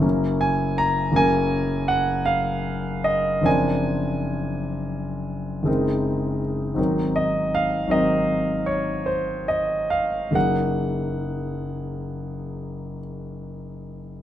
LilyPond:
\new Staff \with { instrumentName = "Grand piano" } { \time 9/8 \key fis \major \tempo 4. = 52 << { r8 gis''8 ais''8 gis''4 fis''8 eis''4 dis''8 | gis''1 r8 | r8 dis''8 eis''8 dis''4 cis''8 bis'8 dis''8 eis''8 | fis''2. r4. | } \\ { <fis,, fis ais cis' ais'>4. <fis,, fis ais cis' ais'>2. | <fis,, eis bis d' ais'>2. <fis,, gis bis dis' ais'>4. | <gis,, fis bis dis' ais'>4. <gis,, fis bis dis' ais'>2. | <fis,, fis ais dis' gis'>1~ <fis,, fis ais dis' gis'>8 | } >> }